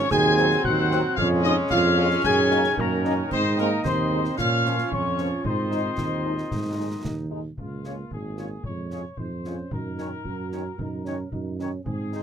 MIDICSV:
0, 0, Header, 1, 9, 480
1, 0, Start_track
1, 0, Key_signature, -5, "major"
1, 0, Tempo, 534283
1, 100, Time_signature, 2, 2, 24, 8
1, 10986, End_track
2, 0, Start_track
2, 0, Title_t, "Piccolo"
2, 0, Program_c, 0, 72
2, 0, Note_on_c, 0, 85, 109
2, 98, Note_on_c, 0, 92, 127
2, 112, Note_off_c, 0, 85, 0
2, 581, Note_on_c, 0, 90, 106
2, 594, Note_off_c, 0, 92, 0
2, 1056, Note_off_c, 0, 90, 0
2, 1061, Note_on_c, 0, 89, 118
2, 1115, Note_off_c, 0, 89, 0
2, 1305, Note_on_c, 0, 87, 108
2, 1359, Note_off_c, 0, 87, 0
2, 1549, Note_on_c, 0, 89, 112
2, 2026, Note_on_c, 0, 92, 127
2, 2040, Note_off_c, 0, 89, 0
2, 2513, Note_on_c, 0, 82, 99
2, 2526, Note_off_c, 0, 92, 0
2, 2985, Note_off_c, 0, 82, 0
2, 2989, Note_on_c, 0, 84, 98
2, 3043, Note_off_c, 0, 84, 0
2, 3235, Note_on_c, 0, 82, 86
2, 3289, Note_off_c, 0, 82, 0
2, 3468, Note_on_c, 0, 84, 103
2, 3909, Note_off_c, 0, 84, 0
2, 3957, Note_on_c, 0, 89, 98
2, 4393, Note_off_c, 0, 89, 0
2, 4427, Note_on_c, 0, 85, 84
2, 4868, Note_off_c, 0, 85, 0
2, 4906, Note_on_c, 0, 84, 87
2, 6303, Note_off_c, 0, 84, 0
2, 10986, End_track
3, 0, Start_track
3, 0, Title_t, "Trumpet section"
3, 0, Program_c, 1, 61
3, 100, Note_on_c, 1, 80, 127
3, 546, Note_off_c, 1, 80, 0
3, 577, Note_on_c, 1, 78, 119
3, 1041, Note_on_c, 1, 77, 127
3, 1058, Note_off_c, 1, 78, 0
3, 1153, Note_off_c, 1, 77, 0
3, 1286, Note_on_c, 1, 75, 125
3, 1397, Note_off_c, 1, 75, 0
3, 1528, Note_on_c, 1, 77, 126
3, 1979, Note_off_c, 1, 77, 0
3, 2021, Note_on_c, 1, 80, 127
3, 2466, Note_off_c, 1, 80, 0
3, 2511, Note_on_c, 1, 70, 103
3, 2984, Note_off_c, 1, 70, 0
3, 2987, Note_on_c, 1, 72, 124
3, 3206, Note_off_c, 1, 72, 0
3, 3231, Note_on_c, 1, 70, 113
3, 3448, Note_off_c, 1, 70, 0
3, 3451, Note_on_c, 1, 72, 99
3, 3900, Note_off_c, 1, 72, 0
3, 3931, Note_on_c, 1, 77, 124
3, 4380, Note_off_c, 1, 77, 0
3, 4422, Note_on_c, 1, 73, 105
3, 4898, Note_off_c, 1, 73, 0
3, 4907, Note_on_c, 1, 72, 96
3, 6304, Note_off_c, 1, 72, 0
3, 6826, Note_on_c, 1, 65, 65
3, 7267, Note_off_c, 1, 65, 0
3, 7303, Note_on_c, 1, 68, 62
3, 7745, Note_off_c, 1, 68, 0
3, 7769, Note_on_c, 1, 73, 66
3, 8218, Note_off_c, 1, 73, 0
3, 8244, Note_on_c, 1, 72, 63
3, 8730, Note_off_c, 1, 72, 0
3, 8744, Note_on_c, 1, 70, 75
3, 10386, Note_off_c, 1, 70, 0
3, 10659, Note_on_c, 1, 68, 77
3, 10986, Note_off_c, 1, 68, 0
3, 10986, End_track
4, 0, Start_track
4, 0, Title_t, "Woodwind section"
4, 0, Program_c, 2, 71
4, 107, Note_on_c, 2, 72, 99
4, 108, Note_on_c, 2, 66, 99
4, 1059, Note_on_c, 2, 68, 93
4, 1059, Note_on_c, 2, 73, 93
4, 1063, Note_off_c, 2, 66, 0
4, 1063, Note_off_c, 2, 72, 0
4, 1983, Note_off_c, 2, 68, 0
4, 2013, Note_on_c, 2, 63, 98
4, 2973, Note_on_c, 2, 75, 90
4, 2978, Note_off_c, 2, 73, 0
4, 3898, Note_off_c, 2, 75, 0
4, 3934, Note_off_c, 2, 63, 0
4, 3940, Note_on_c, 2, 65, 83
4, 3940, Note_on_c, 2, 73, 76
4, 4896, Note_on_c, 2, 75, 66
4, 4897, Note_off_c, 2, 73, 0
4, 5820, Note_off_c, 2, 65, 0
4, 5850, Note_on_c, 2, 63, 65
4, 6539, Note_off_c, 2, 75, 0
4, 6572, Note_off_c, 2, 63, 0
4, 7054, Note_on_c, 2, 73, 42
4, 7057, Note_on_c, 2, 68, 41
4, 7140, Note_off_c, 2, 73, 0
4, 7143, Note_off_c, 2, 68, 0
4, 7543, Note_on_c, 2, 73, 41
4, 7544, Note_on_c, 2, 68, 40
4, 7627, Note_off_c, 2, 73, 0
4, 7628, Note_off_c, 2, 68, 0
4, 8020, Note_on_c, 2, 68, 44
4, 8024, Note_on_c, 2, 73, 46
4, 8105, Note_off_c, 2, 68, 0
4, 8109, Note_off_c, 2, 73, 0
4, 8497, Note_on_c, 2, 68, 43
4, 8498, Note_on_c, 2, 73, 41
4, 8583, Note_off_c, 2, 68, 0
4, 8584, Note_off_c, 2, 73, 0
4, 8976, Note_on_c, 2, 73, 53
4, 8980, Note_on_c, 2, 63, 52
4, 9062, Note_off_c, 2, 73, 0
4, 9065, Note_off_c, 2, 63, 0
4, 9462, Note_on_c, 2, 63, 49
4, 9462, Note_on_c, 2, 73, 51
4, 9547, Note_off_c, 2, 63, 0
4, 9547, Note_off_c, 2, 73, 0
4, 9946, Note_on_c, 2, 63, 56
4, 9949, Note_on_c, 2, 73, 60
4, 10030, Note_off_c, 2, 63, 0
4, 10033, Note_off_c, 2, 73, 0
4, 10435, Note_on_c, 2, 63, 48
4, 10435, Note_on_c, 2, 73, 54
4, 10518, Note_off_c, 2, 63, 0
4, 10518, Note_off_c, 2, 73, 0
4, 10913, Note_on_c, 2, 72, 53
4, 10914, Note_on_c, 2, 63, 53
4, 10986, Note_off_c, 2, 63, 0
4, 10986, Note_off_c, 2, 72, 0
4, 10986, End_track
5, 0, Start_track
5, 0, Title_t, "Euphonium"
5, 0, Program_c, 3, 58
5, 99, Note_on_c, 3, 68, 127
5, 546, Note_off_c, 3, 68, 0
5, 582, Note_on_c, 3, 66, 98
5, 1068, Note_on_c, 3, 65, 116
5, 1081, Note_off_c, 3, 66, 0
5, 1294, Note_off_c, 3, 65, 0
5, 1299, Note_on_c, 3, 63, 113
5, 1407, Note_off_c, 3, 63, 0
5, 1546, Note_on_c, 3, 65, 117
5, 1989, Note_off_c, 3, 65, 0
5, 2026, Note_on_c, 3, 68, 127
5, 2469, Note_off_c, 3, 68, 0
5, 2502, Note_on_c, 3, 58, 88
5, 2946, Note_off_c, 3, 58, 0
5, 2973, Note_on_c, 3, 60, 100
5, 3082, Note_off_c, 3, 60, 0
5, 3227, Note_on_c, 3, 58, 101
5, 3464, Note_on_c, 3, 60, 93
5, 3477, Note_off_c, 3, 58, 0
5, 3941, Note_on_c, 3, 65, 113
5, 3955, Note_off_c, 3, 60, 0
5, 4430, Note_on_c, 3, 61, 92
5, 4443, Note_off_c, 3, 65, 0
5, 4902, Note_off_c, 3, 61, 0
5, 4913, Note_on_c, 3, 60, 88
5, 6307, Note_off_c, 3, 60, 0
5, 6822, Note_on_c, 3, 58, 56
5, 7775, Note_on_c, 3, 56, 44
5, 7789, Note_off_c, 3, 58, 0
5, 8013, Note_off_c, 3, 56, 0
5, 8018, Note_on_c, 3, 65, 54
5, 8126, Note_off_c, 3, 65, 0
5, 8250, Note_on_c, 3, 63, 50
5, 8359, Note_off_c, 3, 63, 0
5, 8488, Note_on_c, 3, 61, 52
5, 8735, Note_on_c, 3, 63, 61
5, 8748, Note_off_c, 3, 61, 0
5, 9225, Note_on_c, 3, 66, 60
5, 9239, Note_off_c, 3, 63, 0
5, 9693, Note_off_c, 3, 66, 0
5, 9699, Note_on_c, 3, 63, 66
5, 9932, Note_on_c, 3, 61, 67
5, 9945, Note_off_c, 3, 63, 0
5, 10171, Note_off_c, 3, 61, 0
5, 10176, Note_on_c, 3, 63, 61
5, 10400, Note_off_c, 3, 63, 0
5, 10411, Note_on_c, 3, 61, 64
5, 10636, Note_off_c, 3, 61, 0
5, 10641, Note_on_c, 3, 60, 64
5, 10986, Note_off_c, 3, 60, 0
5, 10986, End_track
6, 0, Start_track
6, 0, Title_t, "French horn section"
6, 0, Program_c, 4, 60
6, 340, Note_on_c, 4, 60, 92
6, 342, Note_off_c, 4, 60, 0
6, 342, Note_on_c, 4, 60, 87
6, 344, Note_on_c, 4, 54, 90
6, 428, Note_off_c, 4, 60, 0
6, 429, Note_off_c, 4, 54, 0
6, 815, Note_on_c, 4, 54, 92
6, 818, Note_on_c, 4, 60, 87
6, 903, Note_off_c, 4, 54, 0
6, 905, Note_off_c, 4, 60, 0
6, 1297, Note_on_c, 4, 65, 98
6, 1299, Note_on_c, 4, 56, 83
6, 1299, Note_on_c, 4, 61, 84
6, 1384, Note_off_c, 4, 65, 0
6, 1385, Note_off_c, 4, 56, 0
6, 1385, Note_off_c, 4, 61, 0
6, 1773, Note_on_c, 4, 56, 89
6, 1775, Note_on_c, 4, 65, 86
6, 1778, Note_on_c, 4, 61, 92
6, 1861, Note_off_c, 4, 56, 0
6, 1862, Note_off_c, 4, 65, 0
6, 1865, Note_off_c, 4, 61, 0
6, 2256, Note_on_c, 4, 58, 90
6, 2257, Note_on_c, 4, 61, 89
6, 2259, Note_on_c, 4, 63, 94
6, 2343, Note_off_c, 4, 58, 0
6, 2344, Note_off_c, 4, 61, 0
6, 2346, Note_off_c, 4, 63, 0
6, 2733, Note_on_c, 4, 58, 86
6, 2734, Note_on_c, 4, 61, 87
6, 2734, Note_on_c, 4, 63, 85
6, 2821, Note_off_c, 4, 58, 0
6, 2821, Note_off_c, 4, 61, 0
6, 2821, Note_off_c, 4, 63, 0
6, 3207, Note_on_c, 4, 56, 87
6, 3207, Note_on_c, 4, 60, 83
6, 3210, Note_on_c, 4, 63, 91
6, 3296, Note_off_c, 4, 56, 0
6, 3296, Note_off_c, 4, 60, 0
6, 3298, Note_off_c, 4, 63, 0
6, 3699, Note_on_c, 4, 56, 74
6, 3701, Note_on_c, 4, 63, 77
6, 3702, Note_on_c, 4, 60, 83
6, 3785, Note_off_c, 4, 56, 0
6, 3786, Note_off_c, 4, 63, 0
6, 3787, Note_off_c, 4, 60, 0
6, 4177, Note_on_c, 4, 53, 71
6, 4178, Note_on_c, 4, 61, 67
6, 4181, Note_on_c, 4, 58, 77
6, 4263, Note_off_c, 4, 53, 0
6, 4264, Note_off_c, 4, 61, 0
6, 4266, Note_off_c, 4, 58, 0
6, 4655, Note_on_c, 4, 58, 64
6, 4656, Note_on_c, 4, 61, 66
6, 4657, Note_on_c, 4, 53, 68
6, 4742, Note_off_c, 4, 58, 0
6, 4742, Note_off_c, 4, 61, 0
6, 4743, Note_off_c, 4, 53, 0
6, 5134, Note_on_c, 4, 56, 66
6, 5136, Note_on_c, 4, 63, 67
6, 5137, Note_off_c, 4, 63, 0
6, 5137, Note_on_c, 4, 63, 69
6, 5221, Note_off_c, 4, 56, 0
6, 5223, Note_off_c, 4, 63, 0
6, 5609, Note_on_c, 4, 63, 66
6, 5610, Note_off_c, 4, 63, 0
6, 5610, Note_on_c, 4, 56, 65
6, 5610, Note_on_c, 4, 63, 66
6, 5697, Note_off_c, 4, 56, 0
6, 5697, Note_off_c, 4, 63, 0
6, 6084, Note_on_c, 4, 63, 63
6, 6086, Note_on_c, 4, 56, 63
6, 6088, Note_off_c, 4, 63, 0
6, 6088, Note_on_c, 4, 63, 61
6, 6174, Note_off_c, 4, 56, 0
6, 6176, Note_off_c, 4, 63, 0
6, 6563, Note_on_c, 4, 56, 55
6, 6563, Note_on_c, 4, 63, 53
6, 6564, Note_off_c, 4, 63, 0
6, 6564, Note_on_c, 4, 63, 59
6, 6652, Note_off_c, 4, 56, 0
6, 6652, Note_off_c, 4, 63, 0
6, 7045, Note_on_c, 4, 56, 45
6, 7048, Note_on_c, 4, 61, 45
6, 7048, Note_on_c, 4, 65, 42
6, 7133, Note_off_c, 4, 56, 0
6, 7135, Note_off_c, 4, 61, 0
6, 7136, Note_off_c, 4, 65, 0
6, 7527, Note_on_c, 4, 61, 44
6, 7528, Note_on_c, 4, 65, 40
6, 7529, Note_on_c, 4, 56, 43
6, 7615, Note_off_c, 4, 61, 0
6, 7615, Note_off_c, 4, 65, 0
6, 7616, Note_off_c, 4, 56, 0
6, 8013, Note_on_c, 4, 56, 43
6, 8014, Note_on_c, 4, 65, 43
6, 8017, Note_on_c, 4, 61, 45
6, 8100, Note_off_c, 4, 56, 0
6, 8101, Note_off_c, 4, 65, 0
6, 8103, Note_off_c, 4, 61, 0
6, 8490, Note_on_c, 4, 61, 46
6, 8493, Note_on_c, 4, 56, 48
6, 8493, Note_on_c, 4, 65, 46
6, 8578, Note_off_c, 4, 61, 0
6, 8580, Note_off_c, 4, 56, 0
6, 8580, Note_off_c, 4, 65, 0
6, 8973, Note_on_c, 4, 61, 53
6, 8975, Note_on_c, 4, 63, 50
6, 8978, Note_on_c, 4, 51, 53
6, 9060, Note_off_c, 4, 61, 0
6, 9062, Note_off_c, 4, 63, 0
6, 9064, Note_off_c, 4, 51, 0
6, 9456, Note_on_c, 4, 63, 50
6, 9458, Note_on_c, 4, 61, 50
6, 9460, Note_on_c, 4, 51, 51
6, 9543, Note_off_c, 4, 63, 0
6, 9544, Note_off_c, 4, 61, 0
6, 9546, Note_off_c, 4, 51, 0
6, 9929, Note_on_c, 4, 51, 55
6, 9931, Note_on_c, 4, 61, 56
6, 9932, Note_on_c, 4, 63, 54
6, 10017, Note_off_c, 4, 51, 0
6, 10019, Note_off_c, 4, 61, 0
6, 10019, Note_off_c, 4, 63, 0
6, 10417, Note_on_c, 4, 61, 57
6, 10418, Note_on_c, 4, 51, 59
6, 10418, Note_on_c, 4, 63, 56
6, 10504, Note_off_c, 4, 51, 0
6, 10504, Note_off_c, 4, 61, 0
6, 10505, Note_off_c, 4, 63, 0
6, 10895, Note_on_c, 4, 60, 50
6, 10896, Note_on_c, 4, 56, 56
6, 10897, Note_on_c, 4, 63, 55
6, 10983, Note_off_c, 4, 56, 0
6, 10983, Note_off_c, 4, 60, 0
6, 10984, Note_off_c, 4, 63, 0
6, 10986, End_track
7, 0, Start_track
7, 0, Title_t, "Trombone section"
7, 0, Program_c, 5, 61
7, 0, Note_on_c, 5, 61, 101
7, 93, Note_on_c, 5, 54, 94
7, 94, Note_on_c, 5, 60, 92
7, 99, Note_off_c, 5, 61, 0
7, 1056, Note_off_c, 5, 54, 0
7, 1057, Note_off_c, 5, 60, 0
7, 1072, Note_on_c, 5, 56, 108
7, 1077, Note_on_c, 5, 61, 109
7, 1989, Note_off_c, 5, 56, 0
7, 2022, Note_on_c, 5, 51, 92
7, 2987, Note_off_c, 5, 61, 0
7, 2993, Note_on_c, 5, 63, 94
7, 3908, Note_off_c, 5, 63, 0
7, 3938, Note_off_c, 5, 51, 0
7, 3938, Note_on_c, 5, 53, 78
7, 3941, Note_on_c, 5, 61, 82
7, 4896, Note_off_c, 5, 53, 0
7, 4897, Note_off_c, 5, 61, 0
7, 4911, Note_on_c, 5, 51, 76
7, 4917, Note_on_c, 5, 63, 69
7, 6546, Note_off_c, 5, 51, 0
7, 6549, Note_off_c, 5, 63, 0
7, 10986, End_track
8, 0, Start_track
8, 0, Title_t, "Tuba"
8, 0, Program_c, 6, 58
8, 97, Note_on_c, 6, 39, 105
8, 498, Note_off_c, 6, 39, 0
8, 580, Note_on_c, 6, 39, 100
8, 934, Note_off_c, 6, 39, 0
8, 1054, Note_on_c, 6, 41, 106
8, 1456, Note_off_c, 6, 41, 0
8, 1534, Note_on_c, 6, 41, 102
8, 1936, Note_off_c, 6, 41, 0
8, 2011, Note_on_c, 6, 42, 97
8, 2414, Note_off_c, 6, 42, 0
8, 2497, Note_on_c, 6, 42, 95
8, 2897, Note_off_c, 6, 42, 0
8, 2974, Note_on_c, 6, 44, 90
8, 3375, Note_off_c, 6, 44, 0
8, 3453, Note_on_c, 6, 39, 98
8, 3854, Note_off_c, 6, 39, 0
8, 3939, Note_on_c, 6, 46, 91
8, 4337, Note_off_c, 6, 46, 0
8, 4416, Note_on_c, 6, 41, 83
8, 4815, Note_off_c, 6, 41, 0
8, 4892, Note_on_c, 6, 44, 77
8, 5293, Note_off_c, 6, 44, 0
8, 5373, Note_on_c, 6, 39, 79
8, 5773, Note_off_c, 6, 39, 0
8, 5847, Note_on_c, 6, 44, 65
8, 6250, Note_off_c, 6, 44, 0
8, 6329, Note_on_c, 6, 39, 70
8, 6731, Note_off_c, 6, 39, 0
8, 6811, Note_on_c, 6, 37, 52
8, 7212, Note_off_c, 6, 37, 0
8, 7287, Note_on_c, 6, 32, 54
8, 7690, Note_off_c, 6, 32, 0
8, 7773, Note_on_c, 6, 41, 53
8, 8127, Note_off_c, 6, 41, 0
8, 8248, Note_on_c, 6, 41, 53
8, 8651, Note_off_c, 6, 41, 0
8, 8728, Note_on_c, 6, 42, 62
8, 9132, Note_off_c, 6, 42, 0
8, 9208, Note_on_c, 6, 42, 64
8, 9612, Note_off_c, 6, 42, 0
8, 9690, Note_on_c, 6, 42, 59
8, 10094, Note_off_c, 6, 42, 0
8, 10175, Note_on_c, 6, 42, 74
8, 10577, Note_off_c, 6, 42, 0
8, 10652, Note_on_c, 6, 44, 66
8, 10986, Note_off_c, 6, 44, 0
8, 10986, End_track
9, 0, Start_track
9, 0, Title_t, "Drums"
9, 98, Note_on_c, 9, 35, 94
9, 98, Note_on_c, 9, 38, 88
9, 187, Note_off_c, 9, 35, 0
9, 187, Note_off_c, 9, 38, 0
9, 337, Note_on_c, 9, 38, 59
9, 426, Note_off_c, 9, 38, 0
9, 456, Note_on_c, 9, 38, 54
9, 546, Note_off_c, 9, 38, 0
9, 578, Note_on_c, 9, 35, 91
9, 668, Note_off_c, 9, 35, 0
9, 820, Note_on_c, 9, 38, 60
9, 910, Note_off_c, 9, 38, 0
9, 1057, Note_on_c, 9, 35, 97
9, 1147, Note_off_c, 9, 35, 0
9, 1294, Note_on_c, 9, 38, 62
9, 1384, Note_off_c, 9, 38, 0
9, 1531, Note_on_c, 9, 35, 87
9, 1531, Note_on_c, 9, 38, 81
9, 1621, Note_off_c, 9, 35, 0
9, 1621, Note_off_c, 9, 38, 0
9, 1891, Note_on_c, 9, 38, 53
9, 1981, Note_off_c, 9, 38, 0
9, 2012, Note_on_c, 9, 35, 98
9, 2012, Note_on_c, 9, 38, 92
9, 2101, Note_off_c, 9, 35, 0
9, 2101, Note_off_c, 9, 38, 0
9, 2251, Note_on_c, 9, 38, 64
9, 2341, Note_off_c, 9, 38, 0
9, 2371, Note_on_c, 9, 38, 61
9, 2461, Note_off_c, 9, 38, 0
9, 2490, Note_on_c, 9, 35, 87
9, 2580, Note_off_c, 9, 35, 0
9, 2738, Note_on_c, 9, 38, 56
9, 2828, Note_off_c, 9, 38, 0
9, 2976, Note_on_c, 9, 35, 89
9, 2976, Note_on_c, 9, 49, 34
9, 3065, Note_off_c, 9, 35, 0
9, 3065, Note_off_c, 9, 49, 0
9, 3216, Note_on_c, 9, 38, 60
9, 3306, Note_off_c, 9, 38, 0
9, 3457, Note_on_c, 9, 35, 93
9, 3457, Note_on_c, 9, 38, 90
9, 3547, Note_off_c, 9, 35, 0
9, 3547, Note_off_c, 9, 38, 0
9, 3816, Note_on_c, 9, 38, 51
9, 3906, Note_off_c, 9, 38, 0
9, 3940, Note_on_c, 9, 35, 90
9, 3940, Note_on_c, 9, 38, 92
9, 4029, Note_off_c, 9, 35, 0
9, 4029, Note_off_c, 9, 38, 0
9, 4182, Note_on_c, 9, 38, 54
9, 4272, Note_off_c, 9, 38, 0
9, 4297, Note_on_c, 9, 38, 53
9, 4387, Note_off_c, 9, 38, 0
9, 4419, Note_on_c, 9, 35, 83
9, 4508, Note_off_c, 9, 35, 0
9, 4653, Note_on_c, 9, 38, 57
9, 4742, Note_off_c, 9, 38, 0
9, 4891, Note_on_c, 9, 35, 99
9, 4981, Note_off_c, 9, 35, 0
9, 5135, Note_on_c, 9, 38, 55
9, 5225, Note_off_c, 9, 38, 0
9, 5370, Note_on_c, 9, 35, 81
9, 5370, Note_on_c, 9, 38, 82
9, 5460, Note_off_c, 9, 35, 0
9, 5460, Note_off_c, 9, 38, 0
9, 5730, Note_on_c, 9, 38, 46
9, 5820, Note_off_c, 9, 38, 0
9, 5853, Note_on_c, 9, 35, 87
9, 5853, Note_on_c, 9, 38, 69
9, 5943, Note_off_c, 9, 35, 0
9, 5943, Note_off_c, 9, 38, 0
9, 6330, Note_on_c, 9, 35, 80
9, 6330, Note_on_c, 9, 38, 80
9, 6420, Note_off_c, 9, 35, 0
9, 6420, Note_off_c, 9, 38, 0
9, 6808, Note_on_c, 9, 35, 66
9, 6898, Note_off_c, 9, 35, 0
9, 7044, Note_on_c, 9, 38, 34
9, 7134, Note_off_c, 9, 38, 0
9, 7286, Note_on_c, 9, 35, 64
9, 7375, Note_off_c, 9, 35, 0
9, 7522, Note_on_c, 9, 38, 32
9, 7611, Note_off_c, 9, 38, 0
9, 7759, Note_on_c, 9, 35, 69
9, 7849, Note_off_c, 9, 35, 0
9, 8002, Note_on_c, 9, 38, 34
9, 8092, Note_off_c, 9, 38, 0
9, 8240, Note_on_c, 9, 35, 64
9, 8330, Note_off_c, 9, 35, 0
9, 8487, Note_on_c, 9, 38, 36
9, 8577, Note_off_c, 9, 38, 0
9, 8725, Note_on_c, 9, 35, 80
9, 8815, Note_off_c, 9, 35, 0
9, 8968, Note_on_c, 9, 38, 37
9, 9058, Note_off_c, 9, 38, 0
9, 9207, Note_on_c, 9, 35, 70
9, 9297, Note_off_c, 9, 35, 0
9, 9451, Note_on_c, 9, 38, 34
9, 9540, Note_off_c, 9, 38, 0
9, 9692, Note_on_c, 9, 35, 78
9, 9782, Note_off_c, 9, 35, 0
9, 9932, Note_on_c, 9, 38, 33
9, 10022, Note_off_c, 9, 38, 0
9, 10171, Note_on_c, 9, 35, 68
9, 10261, Note_off_c, 9, 35, 0
9, 10416, Note_on_c, 9, 38, 33
9, 10506, Note_off_c, 9, 38, 0
9, 10653, Note_on_c, 9, 35, 80
9, 10743, Note_off_c, 9, 35, 0
9, 10893, Note_on_c, 9, 38, 36
9, 10983, Note_off_c, 9, 38, 0
9, 10986, End_track
0, 0, End_of_file